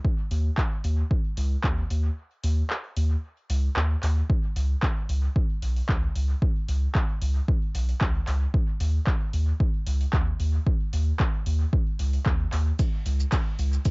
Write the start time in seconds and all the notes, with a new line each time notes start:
0.05 kick
0.31 D#2, open hi-hat
0.58 kick, clap
0.84 D#2, open hi-hat
1.11 kick
1.37 C#2, open hi-hat
1.64 D#2, kick, clap
1.90 D#2, open hi-hat
2.43 D#2, open hi-hat
2.70 clap
2.97 D#2, open hi-hat
3.50 C#2, open hi-hat
3.76 D#2, clap
4.03 D#2, clap, open hi-hat
4.30 kick
4.56 C#2, open hi-hat
4.83 kick, clap
5.09 C#2, open hi-hat
5.36 kick
5.62 B1, open hi-hat
5.76 open hi-hat
5.89 C#2, kick, clap
6.15 C#2, open hi-hat
6.42 kick
6.68 C#2, open hi-hat
6.95 kick, clap
7.21 C#2, open hi-hat
7.48 kick
7.75 B1, open hi-hat
7.89 open hi-hat
8.01 C#2, kick, clap
8.28 C#2, clap, open hi-hat
8.54 kick
8.81 D#2, open hi-hat
9.07 kick, clap
9.34 D#2, open hi-hat
9.61 kick
9.87 C#2, open hi-hat
10.01 open hi-hat
10.13 D#2, kick, clap
10.40 D#2, open hi-hat
10.67 kick
10.93 D#2, open hi-hat
11.20 kick, clap
11.46 D#2, open hi-hat
11.73 kick
11.99 C#2, open hi-hat
12.13 open hi-hat
12.26 D#2, kick, clap
12.52 D#2, clap, open hi-hat
12.79 kick, ride, shaker
13.06 C#2, open hi-hat, shaker
13.20 shaker
13.32 kick, clap, ride, shaker
13.59 C#2, open hi-hat, shaker
13.73 shaker
13.85 kick, ride, shaker